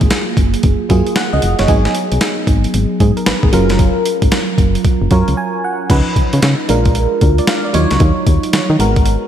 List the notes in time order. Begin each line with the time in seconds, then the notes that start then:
Already playing: F#3 A#3 F4 G#4
0.01 G#1, kick, closed hi-hat
0.10 snare, closed hi-hat
0.37 F#1, kick, closed hi-hat
0.54 closed hi-hat
0.63 F#1, kick, closed hi-hat
0.89 F#2 F#3 A#3 F4 G#4, kick, closed hi-hat
1.07 closed hi-hat
1.16 F#5, snare, closed hi-hat
1.33 C#2 D#5
1.42 F1, closed hi-hat
1.59 F#1 C#5, snare, closed hi-hat
1.68 G#1 F#3 B3 D#4 G#4, kick, closed hi-hat
1.85 snare
1.95 closed hi-hat
2.12 B1, closed hi-hat
2.21 snare, closed hi-hat
2.47 G#1, kick, closed hi-hat
2.64 closed hi-hat
2.74 G#1, closed hi-hat
3.00 G#2 G#4, kick, closed hi-hat
3.17 A#4, closed hi-hat
3.26 G#1 B4, snare, closed hi-hat
3.43 G#1 G#4, kick
3.52 F#1 F#3 C#4 F4 A#4, closed hi-hat
3.70 snare, closed hi-hat
3.79 kick, closed hi-hat
4.06 closed hi-hat
4.22 G#1, kick, closed hi-hat
4.32 snare, closed hi-hat
4.58 F#1, kick, closed hi-hat
4.75 closed hi-hat
4.85 kick, closed hi-hat
5.02 F#1
5.11 F#2 F#3 C#4 F4 A#4 C#5, kick, closed hi-hat
5.28 C#2, closed hi-hat
5.37 G#5
5.64 F#5
5.89 C#2 F3 C#4 D#4 B4, kick, closed hi-hat, crash
6.16 C#3, kick, closed hi-hat
6.33 C#3, closed hi-hat
6.42 C#3, snare, closed hi-hat
6.68 A#1 G#3 D4 F4 A#4, closed hi-hat
6.85 kick, closed hi-hat
6.95 closed hi-hat
7.21 D2 A#4, kick, closed hi-hat
7.38 D5, closed hi-hat
7.47 F5, snare, closed hi-hat
7.64 D5
7.73 D#2 F#3 D#4 F4 C#5, closed hi-hat
7.91 C#2, snare, closed hi-hat
8.00 D#2, kick, closed hi-hat
8.27 D#2, kick, closed hi-hat
8.43 closed hi-hat
8.53 D#3, snare, closed hi-hat
8.70 D#3
8.79 G#1 G#3 B3 F#4 A#4, closed hi-hat
8.96 kick, closed hi-hat
9.06 closed hi-hat